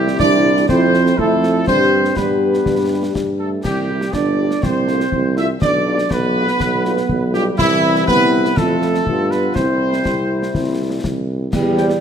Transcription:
Already playing: C2 G3 C4 E4 G4
0.08 snare
0.19 C2 D4 D5, concert bass drum, snare
0.57 snare
0.69 F2 A3 C4 E4 C5, concert bass drum, snare
0.94 snare
1.06 snare
1.18 F2 A3 C4 E4 A4, concert bass drum
1.43 snare
1.67 G2 G3 C4 D4 G4 C5, concert bass drum, snare
2.05 snare
2.16 G2 G3 B3 D4 G4 B4, concert bass drum, snare
2.54 snare
2.66 G2, concert bass drum, snare
3.15 G2, concert bass drum, snare
3.40 A3 A4
3.64 C2 G3 G4, concert bass drum, snare, crash
3.89 G3 E4 G4
4.01 snare
4.13 G1 D4 D5, concert bass drum, snare
4.38 G3 E4 G4
4.51 snare
4.63 C2 C4 C5, concert bass drum, snare
4.88 A3 D4 F4, snare
5.00 snare
5.12 C2, concert bass drum
5.36 A3 D4 E4 F4 E5, snare
5.62 B1 D4 D5, concert bass drum, snare
5.87 G3 D4 F4
5.98 snare
6.10 B1 B3 B4, concert bass drum, snare
6.35 G3 D4 F4
6.48 snare
6.60 B1, concert bass drum, snare
6.85 G3 D4 F4, snare
6.97 snare
7.09 B1, concert bass drum
7.34 G3 D4 F4 G4, snare
7.58 C2 E3 G3 C4 E4, concert bass drum, snare, crash
7.95 snare
8.08 C2 B3 B4, concert bass drum, snare
8.45 snare
8.57 F2 A3 C4 F4 A4, concert bass drum, snare
8.82 snare
8.94 snare
9.06 G2 G3 B3 F4, concert bass drum
9.31 B3 B4, snare
9.55 C2 G3 C4 E4 C5, concert bass drum, snare
9.93 snare
10.05 C2, concert bass drum, snare
10.42 snare
10.55 C2, concert bass drum, snare
11.04 C2, concert bass drum, snare
11.53 E2 G3, concert bass drum, snare, crash
11.77 C5 G5, snare
11.90 snare

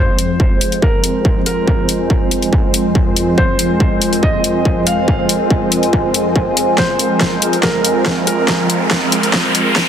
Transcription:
Already playing: F2 F3 G#3 C4 F4 C5
0.19 closed hi-hat
0.30 D#5
0.40 A#4, kick
0.61 closed hi-hat
0.72 closed hi-hat
0.79 A#4 G#5, kick
1.04 closed hi-hat
1.25 kick
1.46 A#4, closed hi-hat
1.68 kick
1.89 closed hi-hat
2.10 kick
2.31 closed hi-hat
2.42 closed hi-hat
2.53 kick
2.74 closed hi-hat
2.95 kick
3.16 closed hi-hat
3.38 C5, kick
3.59 closed hi-hat
3.80 kick
4.02 closed hi-hat
4.13 closed hi-hat
4.23 D#5, kick
4.44 closed hi-hat
4.65 kick
4.87 F5, closed hi-hat
5.08 kick
5.29 closed hi-hat
5.50 kick
5.72 closed hi-hat
5.83 closed hi-hat
5.93 kick
6.14 closed hi-hat
6.36 kick
6.57 closed hi-hat
6.78 A#4 C5, kick, snare, riser
6.99 closed hi-hat
7.21 kick, snare
7.42 closed hi-hat
7.53 closed hi-hat
7.63 A#4, kick, snare
7.85 closed hi-hat
8.06 kick, snare
8.27 A#4, closed hi-hat
8.48 kick, snare
8.70 closed hi-hat
8.91 kick, snare
9.12 closed hi-hat
9.23 closed hi-hat
9.33 kick, snare
9.55 closed hi-hat
9.76 kick, snare

